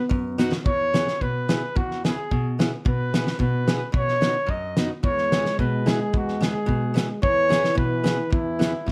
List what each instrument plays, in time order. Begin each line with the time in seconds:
Already playing: euphonium B3
0.09 steel-string acoustic guitar F#2, kick
0.38 steel-string acoustic guitar B3 D#4 F#4, snare, hi-hat pedal
0.52 snare
0.65 steel-string acoustic guitar E2, flugelhorn C#5, kick
0.94 steel-string acoustic guitar B3 E4 G#4, snare, hi-hat pedal
1.08 snare
1.21 steel-string acoustic guitar B2, flugelhorn B4, kick
1.49 steel-string acoustic guitar B3 E4 G#4, snare, hi-hat pedal
1.76 steel-string acoustic guitar E2, flugelhorn F#4, kick
1.91 snare
2.04 steel-string acoustic guitar B3 E4 G#4, flugelhorn G#4, snare, hi-hat pedal
2.31 steel-string acoustic guitar B2, kick
2.59 steel-string acoustic guitar B3 E4 G#4, snare, hi-hat pedal
2.85 steel-string acoustic guitar B2, flugelhorn B4, kick
3.14 steel-string acoustic guitar B3 E4 G#4, snare, hi-hat pedal
3.27 snare
3.39 steel-string acoustic guitar B2, flugelhorn B4, kick
3.67 steel-string acoustic guitar B3 E4 G#4, snare, hi-hat pedal
3.92 steel-string acoustic guitar B2, kick
3.97 flugelhorn C#5
4.08 snare
4.21 steel-string acoustic guitar B3 D#4 F#4, snare, hi-hat pedal
4.46 steel-string acoustic guitar F#2, flugelhorn D#5, kick
4.77 steel-string acoustic guitar B3 D#4 F#4, snare, hi-hat pedal
5.03 steel-string acoustic guitar E2, euphonium G#3, flugelhorn C#5, kick
5.18 snare
5.32 steel-string acoustic guitar B3 E4 G#4, snare, hi-hat pedal
5.46 snare
5.59 steel-string acoustic guitar B2, flugelhorn B4, kick
5.86 steel-string acoustic guitar B3 E4 G#4, flugelhorn G#4, snare, hi-hat pedal
6.13 steel-string acoustic guitar E2, flugelhorn F#4, kick
6.28 snare
6.41 steel-string acoustic guitar B3 E4 G#4, flugelhorn G#4, snare, hi-hat pedal
6.66 steel-string acoustic guitar B2, kick
6.94 steel-string acoustic guitar B3 E4 G#4, snare, hi-hat pedal
7.22 steel-string acoustic guitar E2, euphonium E3, flugelhorn C#5, kick
7.49 steel-string acoustic guitar B3 E4 G#4, snare, hi-hat pedal
7.64 snare
7.75 steel-string acoustic guitar B2, flugelhorn B4, kick
8.04 steel-string acoustic guitar B3 E4 G#4, snare, hi-hat pedal
8.30 steel-string acoustic guitar E2, flugelhorn E4, kick
8.59 steel-string acoustic guitar B3 E4 G#4, snare, hi-hat pedal
8.86 steel-string acoustic guitar B2, kick, snare